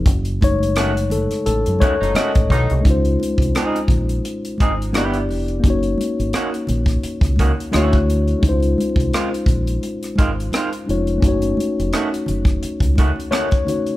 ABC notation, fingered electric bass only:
X:1
M:4/4
L:1/16
Q:"Swing 16ths" 1/4=86
K:Db
V:1 name="Fingered electric bass" clef=bass
G,,,6- G,,, z =A,,, G,, z G,,, z A,,, _C,, =C,, | D,,2 z C,, z2 B,,,2 z2 A,,,2 =G,,,2 F,,,2 | G,,,2 z A,,, z2 B,,,2 z D,,2 z =D,,4 | D,,2 z C,, z2 B,,,2 z2 A,,,2 z2 F,,,2 |
G,,,2 z F,,, z2 G,,,2 z D,,2 z4 z |]